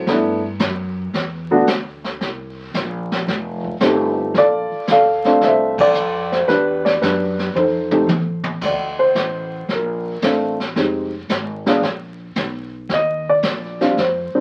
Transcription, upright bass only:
0.07 0.58 G2 medium
0.60 1.12 F#2 medium
1.13 1.65 E2 medium
1.67 2.19 D2 medium
2.21 2.72 C2 medium
2.74 3.26 A#1 medium
3.28 3.79 F1 medium
3.81 4.32 G1 medium
4.34 4.68 A#1 medium
4.71 muted upright bass stroke soft
4.88 5.40 D2 loud
5.42 5.93 C2 medium
5.94 6.46 F2 medium
6.48 7.00 E2 medium
7.02 7.53 F#2 medium
7.54 8.06 F2 medium
8.07 8.59 A2 medium
8.62 9.13 D2 medium
9.15 9.67 A1 medium
9.68 10.20 A#1 medium
10.22 10.74 A1 medium
10.76 11.28 F1 medium
11.29 11.81 G#1 medium
11.82 12.34 A#1 medium
12.36 12.88 B1 medium
12.89 13.41 D#2 medium
13.43 13.95 A#1 medium
13.97 14.31 F2 medium
14.33 muted upright bass stroke soft

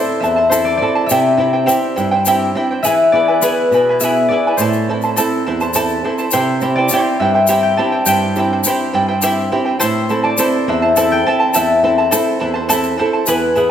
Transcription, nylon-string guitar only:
0.00 0.40 C4 medium
0.00 0.40 E4 soft
0.00 0.40 A4 medium
0.23 0.79 E2 medium
0.51 0.80 C4 soft
0.51 0.81 E4 soft
0.51 0.81 A4 medium
0.81 1.05 C4 soft
0.81 1.05 E4 soft
0.81 1.05 A4 medium
1.11 1.67 C3 medium
1.37 1.66 C4 medium
1.37 1.66 E4 soft
1.37 1.67 G4 medium
1.67 2.14 C4 soft
1.67 2.14 E4 soft
1.67 2.15 G4 medium
1.98 2.54 G2 medium
2.26 2.54 C4 soft
2.26 2.54 E4 soft
2.26 2.54 G4 medium
2.55 2.78 C4 soft
2.55 2.79 E4 soft
2.55 2.79 G4 medium
2.86 3.42 E3 medium
3.13 3.41 B3 soft
3.13 3.41 E4 soft
3.13 3.42 G#4 medium
3.42 3.89 B3 medium
3.42 3.89 E4 soft
3.42 3.89 G#4 medium
3.71 4.28 B2 medium
4.00 4.29 B3 soft
4.00 4.29 E4 soft
4.00 4.30 G#4 medium
4.30 4.53 B3 medium
4.30 4.53 E4 soft
4.30 4.54 G#4 medium
4.59 5.15 A2 medium
4.88 5.17 C4 soft
4.88 5.18 E4 soft
4.88 5.18 A4 medium
5.18 5.64 C4 soft
5.18 5.65 E4 soft
5.18 5.65 A4 medium
5.47 6.03 E2 medium
5.75 6.03 C4 soft
5.75 6.04 E4 soft
5.75 6.04 A4 medium
6.04 6.27 C4 soft
6.04 6.27 E4 soft
6.04 6.28 A4 medium
6.34 6.89 C3 medium
6.62 6.91 C4 medium
6.62 6.91 E4 soft
6.62 6.91 G4 medium
6.92 7.38 C4 medium
6.92 7.38 E4 soft
6.92 7.38 G4 medium
7.20 7.76 G2 medium
7.49 7.77 C4 medium
7.49 7.77 E4 soft
7.49 7.78 G4 medium
7.78 8.24 C4 medium
7.78 8.25 E4 soft
7.78 8.25 G4 medium
8.06 8.63 G2 medium
8.36 8.64 C4 medium
8.36 8.65 E4 soft
8.36 8.65 G4 medium
8.65 9.11 C4 medium
8.65 9.12 E4 soft
8.65 9.12 G4 medium
8.94 9.50 G2 medium
9.23 9.51 C4 soft
9.23 9.51 E4 soft
9.23 9.52 G4 medium
9.52 9.75 C4 medium
9.52 9.75 E4 soft
9.52 9.75 G4 medium
9.82 10.37 A2 medium
10.10 10.37 C4 medium
10.10 10.37 E4 medium
10.10 10.38 A4 medium
10.38 10.85 C4 medium
10.38 10.85 E4 soft
10.38 10.85 A4 medium
10.68 11.24 E2 medium
10.97 11.25 C4 medium
10.97 11.25 E4 soft
10.97 11.26 A4 medium
11.26 11.72 C4 medium
11.26 11.72 E4 soft
11.26 11.73 A4 medium
11.56 12.11 E2 medium
11.83 12.12 C4 medium
11.83 12.11 E4 soft
11.83 12.12 A4 medium
12.12 12.59 C4 medium
12.12 12.58 E4 soft
12.12 12.59 A4 medium
12.41 12.97 E2 medium
12.70 12.99 C4 medium
12.70 12.99 E4 soft
12.70 13.00 A4 medium
13.00 13.23 C4 soft
13.00 13.23 E4 soft
13.00 13.23 A4 medium
13.28 13.71 E2 medium
13.56 13.71 B3 medium
13.56 13.71 E4 soft
13.56 13.71 G#4 medium

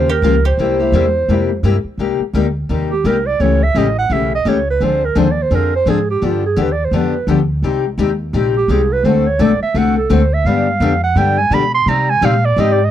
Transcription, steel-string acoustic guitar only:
0.23 0.34 C#3 medium
0.23 0.34 F3 medium
0.23 0.34 A#3 medium
0.23 0.35 F4 medium
0.23 0.35 G4 medium
0.59 0.79 C3 medium
0.59 0.79 G3 medium
0.59 0.79 A#3 medium
0.59 0.79 E4 medium
0.59 0.78 G4 medium
0.79 0.93 A#3 soft
0.79 0.93 E4 medium
0.79 0.93 G4 medium
0.93 1.04 C3 medium
0.93 1.04 G3 medium
0.93 1.05 A#3 medium
0.93 1.05 E4 medium
0.93 1.05 G4 medium
1.29 1.49 C3 medium
1.29 1.49 G3 medium
1.29 1.50 A#3 medium
1.29 1.50 E4 medium
1.29 1.50 G4 medium
1.64 1.75 C3 medium
1.64 1.75 G3 medium
1.64 1.75 A#3 medium
1.64 1.75 E4 medium
1.64 1.75 G4 medium
1.99 2.19 C3 medium
1.99 2.20 G3 medium
1.99 2.20 A#3 medium
1.99 2.20 D#4 medium
1.99 2.20 G4 medium
2.35 2.45 C3 medium
2.35 2.45 G3 medium
2.35 2.45 A#3 medium
2.35 2.46 D#4 medium
2.35 2.46 G4 medium
2.69 2.90 C3 medium
2.69 2.90 G3 medium
2.69 2.90 A#3 medium
2.69 2.90 D#4 medium
2.69 2.91 G4 medium
3.05 3.16 C3 medium
3.05 3.16 G3 medium
3.05 3.16 A#3 medium
3.05 3.16 D#4 medium
3.05 3.16 G4 medium
3.40 3.60 C#3 medium
3.40 3.61 E3 medium
3.40 3.61 A3 medium
3.40 3.61 C#4 medium
3.40 3.61 G4 medium
3.75 3.86 C#3 medium
3.75 3.86 E3 medium
3.75 3.86 A3 medium
3.75 3.87 C#4 medium
3.75 3.87 G4 medium
4.10 4.31 C#3 medium
4.10 4.31 E3 medium
4.10 4.31 A3 medium
4.10 4.31 C#4 medium
4.10 4.31 G4 medium
4.45 4.56 C#3 medium
4.45 4.57 E3 medium
4.45 4.57 A3 medium
4.45 4.57 C#4 medium
4.45 4.57 G4 medium
4.81 5.01 D3 medium
4.81 5.01 F3 medium
4.81 5.02 C4 medium
4.81 5.02 D4 medium
4.81 5.02 G#4 medium
5.15 5.27 D3 medium
5.15 5.27 F3 loud
5.15 5.27 C4 medium
5.15 5.27 D4 medium
5.15 5.27 G#4 medium
5.51 5.72 D3 medium
5.51 5.72 F3 medium
5.51 5.72 C4 medium
5.51 5.72 D4 medium
5.51 5.72 G#4 medium
5.87 5.98 D3 medium
5.87 5.98 F3 medium
5.87 5.98 C4 medium
5.87 5.98 D4 medium
5.87 5.98 G#4 medium
6.22 6.42 D3 medium
6.22 6.43 F3 medium
6.22 6.43 B3 medium
6.22 6.43 D4 medium
6.22 6.43 G4 medium
6.56 6.68 D3 medium
6.56 6.68 F3 medium
6.56 6.68 B3 medium
6.56 6.68 D4 medium
6.56 6.69 G4 medium
6.93 7.13 D3 medium
6.93 7.13 F3 medium
6.93 7.14 B3 medium
6.93 7.14 D4 medium
6.93 7.14 G4 medium
7.28 7.39 D3 medium
7.28 7.39 F3 medium
7.28 7.39 B3 medium
7.28 7.39 D4 medium
7.28 7.39 G4 medium
7.63 7.84 C3 medium
7.63 7.84 G3 medium
7.63 7.84 C4 medium
7.63 7.84 D#4 medium
7.63 7.84 G4 medium
7.98 8.09 C3 medium
7.98 8.10 G3 medium
7.98 8.10 C4 medium
7.98 8.10 D#4 medium
7.98 8.10 G4 medium
8.34 8.54 C3 medium
8.34 8.54 G3 medium
8.34 8.54 C4 medium
8.34 8.55 D#4 medium
8.34 8.55 G4 medium
8.69 8.80 C3 medium
8.69 8.80 G3 medium
8.69 8.80 C4 medium
8.69 8.81 D#4 medium
8.69 8.81 G4 medium
9.05 9.25 D3 medium
9.05 9.25 A3 medium
9.05 9.25 C4 medium
9.05 9.26 F#4 medium
9.05 9.26 A4 medium
9.39 9.50 D3 medium
9.39 9.51 A3 medium
9.39 9.51 C4 medium
9.39 9.51 F#4 medium
9.39 9.51 A4 medium
9.75 9.95 D3 medium
9.75 9.95 A3 medium
9.75 9.96 C4 medium
9.75 9.96 F#4 medium
9.75 9.96 A4 medium
10.10 10.21 D3 medium
10.10 10.21 A3 medium
10.10 10.21 C4 medium
10.10 10.21 F#4 medium
10.10 10.21 A4 medium
10.46 10.66 D3 medium
10.46 10.66 G3 medium
10.46 10.67 B3 medium
10.46 10.67 D4 medium
10.46 10.67 G4 medium
10.81 10.92 D3 medium
10.81 10.92 G3 medium
10.81 10.92 B3 loud
10.81 10.92 D4 medium
10.81 10.92 G4 loud
11.16 11.37 D3 medium
11.16 11.37 G3 medium
11.16 11.37 B3 medium
11.16 11.37 D4 medium
11.16 11.37 G4 medium
11.52 11.62 D3 medium
11.52 11.62 G3 medium
11.52 11.63 B3 medium
11.52 11.63 D4 medium
11.52 11.63 G4 loud
11.87 12.07 C3 medium
11.87 12.07 G3 medium
11.87 12.08 C4 medium
11.87 12.08 D#4 medium
11.87 12.08 G4 medium
11.87 12.08 D5 medium
12.22 12.33 C3 medium
12.22 12.33 G3 medium
12.22 12.33 C4 medium
12.22 12.33 D#4 medium
12.22 12.33 G4 loud
12.22 12.33 D5 medium
12.58 12.78 C3 medium
12.58 12.78 G3 medium
12.58 12.78 C4 medium
12.58 12.78 D#4 medium
12.58 12.78 G4 medium
12.58 12.78 D5 medium

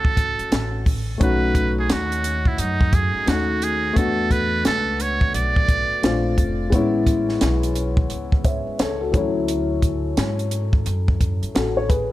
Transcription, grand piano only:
0.00 0.81 A3 medium
0.00 0.82 C#4 medium
0.00 0.83 E4 soft
0.00 0.84 F#4 medium
1.18 3.22 A3 medium
1.18 3.23 C#4 medium
1.18 3.24 D#4 medium
1.24 3.25 F#4 medium
3.26 3.92 A3 soft
3.26 3.96 C#4 soft
3.26 3.97 D#4 soft
3.26 3.97 F#4 medium
3.93 5.98 A3 medium
3.93 5.99 B3 medium
3.93 6.00 D4 medium
3.99 6.01 F#4 medium
6.02 6.72 A3 medium
6.02 6.72 C4 medium
6.02 6.73 D4 medium
6.02 6.73 F4 medium
6.70 9.09 G#3 medium
6.70 9.09 B3 medium
6.70 9.10 C#4 medium
6.75 9.11 E4 medium
8.45 8.78 C#5 soft
8.45 8.78 E5 medium
8.80 9.00 A4 medium
8.80 9.00 C#5 medium
9.01 9.34 F#4 soft
9.01 9.12 A4 medium
9.11 9.21 E3 medium
9.11 11.86 C#4 medium
9.11 11.54 A4 medium
9.17 11.88 F#3 medium
9.17 11.87 E4 medium
11.55 11.76 F#4 medium
11.55 11.76 A4 medium
11.77 11.89 A4 soft
11.77 11.89 C#5 medium
11.89 12.11 G#4 medium
11.89 12.10 B4 medium

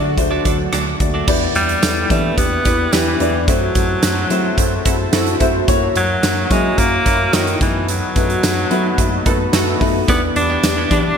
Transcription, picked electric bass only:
0.00 0.19 D3 medium
0.18 0.37 D2 loud
0.45 0.65 D2 medium
0.73 0.93 D2 medium
1.00 1.20 D2 medium
1.28 1.48 E2 loud
1.55 1.75 E2 loud
1.83 2.03 E2 loud
2.10 2.30 E3 medium
2.38 2.58 E2 loud
2.65 2.85 E2 loud
2.93 3.13 E2 loud
3.20 3.48 E2 loud
3.48 3.68 F#2 loud
3.75 3.95 F#2 loud
4.03 4.23 F#2 loud
4.30 4.50 F#3 loud
4.58 4.78 F#2 loud
4.86 5.05 F#2 loud
5.13 5.33 F#2 loud
5.41 5.60 F#2 medium
5.68 5.88 F#2 loud
5.96 6.16 F#2 loud
6.23 6.43 F#2 loud
6.51 6.70 F#3 loud
6.78 6.98 F#2 loud
7.06 7.26 F#2 loud
7.33 7.53 F#2 medium
7.61 8.01 F#2 loud
8.16 8.36 F#2 loud
8.44 8.63 F#2 loud
8.71 8.91 F#3 medium
8.98 9.18 F#2 loud
9.26 9.46 F#2 loud
9.54 9.73 F#2 loud
9.81 10.01 F#2 loud
10.08 10.28 E2 loud
10.36 10.56 E2 medium
10.63 10.83 E2 medium
10.91 11.11 E3 medium

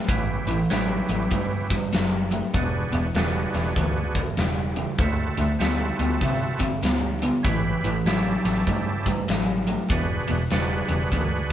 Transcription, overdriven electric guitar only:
0.09 0.44 A2 medium
0.09 0.44 E3 medium
0.47 0.68 A2 medium
0.47 0.68 E3 medium
0.70 1.05 A2 medium
0.70 1.06 F#3 medium
1.09 1.29 A2 medium
1.09 1.30 F#3 medium
1.31 1.66 A2 medium
1.31 1.67 G3 medium
1.70 1.91 A2 medium
1.70 1.91 G3 medium
1.93 2.28 A2 medium
1.93 2.28 F#3 medium
2.32 2.52 A2 medium
2.32 2.52 F#3 medium
2.54 2.89 E2 medium
2.54 2.90 B2 medium
2.92 3.13 E2 medium
2.92 3.13 B2 medium
3.15 3.50 E2 medium
3.15 3.50 C#3 medium
3.55 3.75 E2 medium
3.55 3.75 C#3 medium
3.77 4.12 E2 medium
3.77 4.12 D3 medium
4.15 4.36 E2 medium
4.15 4.36 D3 medium
4.37 4.73 E2 medium
4.37 4.73 C#3 medium
4.76 4.97 E2 medium
4.76 4.97 C#3 medium
4.98 5.34 D3 medium
4.98 5.34 A3 medium
5.38 5.58 D3 medium
5.38 5.58 A3 medium
5.61 5.96 D3 medium
5.61 5.96 B3 medium
5.99 6.20 D3 medium
5.99 6.20 B3 medium
6.21 6.57 D3 medium
6.21 6.57 C4 medium
6.59 6.80 D3 medium
6.59 6.80 C4 medium
6.83 7.18 D3 medium
6.83 7.18 B3 medium
7.22 7.42 D3 medium
7.22 7.43 B3 medium
7.45 7.80 A2 medium
7.45 7.80 E3 medium
7.85 8.04 A2 medium
7.85 8.04 E3 medium
8.06 8.41 A2 medium
8.06 8.41 F#3 medium
8.45 8.65 A2 medium
8.45 8.65 F#3 medium
8.68 9.02 A2 medium
8.68 9.02 G3 medium
9.07 9.26 A2 medium
9.07 9.26 G3 medium
9.28 9.63 A2 medium
9.28 9.63 F#3 medium
9.68 9.87 A2 medium
9.68 9.88 F#3 medium
9.89 10.24 E2 medium
9.89 10.25 B2 medium
10.28 10.48 E2 medium
10.28 10.48 B2 medium
10.51 10.85 E2 medium
10.51 10.86 C#3 medium
10.89 11.09 E2 medium
10.89 11.09 C#3 medium
11.13 11.47 E2 medium
11.13 11.47 D3 medium

